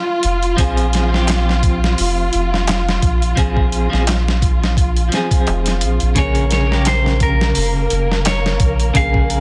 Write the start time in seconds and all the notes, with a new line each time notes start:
Already playing: F4
0.23 F1, closed hi-hat
0.43 closed hi-hat
0.57 A#1 F3 C4 G#4, kick, closed hi-hat
0.77 closed hi-hat
0.93 snare, closed hi-hat
1.09 F3 C4
1.14 G4, snare
1.27 snare, closed hi-hat, darbuka tek
1.49 snare
1.63 kick, closed hi-hat
1.84 snare
1.98 F1, open hi-hat
2.33 F1, closed hi-hat
2.54 snare
2.67 snare, closed hi-hat, darbuka tek
2.89 snare
3.02 A#1, kick, closed hi-hat
3.22 closed hi-hat
3.36 A#1 F3 C4 G#4, kick, closed hi-hat
3.57 kick
3.72 closed hi-hat
3.90 A#1 F3 C4 G#4, snare
4.07 snare, closed hi-hat, darbuka tek
4.28 snare
4.42 kick, closed hi-hat
4.64 snare
4.77 kick, closed hi-hat
4.97 closed hi-hat
5.09 F3 C4, closed hi-hat
5.14 G#4, snare
5.31 kick, closed hi-hat
5.47 F1, closed hi-hat, darbuka tek
5.66 snare, closed hi-hat
5.81 A#1, closed hi-hat
6.00 A#1, closed hi-hat
6.15 A#1 C#3 A#3 G#4 A#4 C#5, kick, closed hi-hat
6.35 closed hi-hat
6.51 C#5, snare, closed hi-hat
6.67 C#3 A#3
6.72 G4, snare
6.85 C5, snare, closed hi-hat, darbuka tek
7.06 snare
7.20 A#4, kick, closed hi-hat
7.41 snare
7.55 F1, open hi-hat
7.90 F1, closed hi-hat
8.12 snare
8.25 C#5, snare, closed hi-hat, darbuka tek
8.46 snare
8.60 A#1, kick, closed hi-hat
8.80 closed hi-hat
8.94 A#1 C#3 A#3 G#4 F5, kick, closed hi-hat
9.14 kick
9.30 closed hi-hat